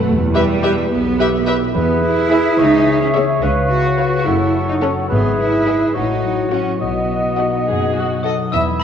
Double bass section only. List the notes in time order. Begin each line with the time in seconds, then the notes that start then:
0.07 E2
0.91 B1
1.75 E2
2.58 C#2
3.42 C#2
4.26 F#1
5.11 G#1
5.96 A1
6.81 B1
7.67 F#1
8.54 E2